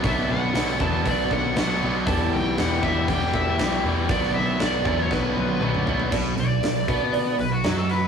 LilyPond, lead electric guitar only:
\new Staff \with { instrumentName = "Lead electric guitar" } { \time 4/4 \key b \minor \tempo 4 = 118 e''8 fis''4 a''8 d''8 fis''8 fis''8. r16 | a''8 g''8 fis''8 e''8 g''8 e''4 r8 | d''8 e''8 d''8. cis''16 b'4 r4 | r8 d''2 b'16 fis'8 a'16 b'8 | }